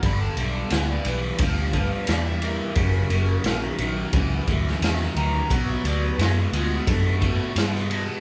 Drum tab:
RD |x-x-x-x-x-x-x-x-|x-x-x-x-x-x-x-x-|x-x-x-x-x-x-x-x-|
SD |----o-------o---|----o------ooo--|----o-------oo--|
BD |o-------o-o-----|o-------o-o-----|o-------o-o-----|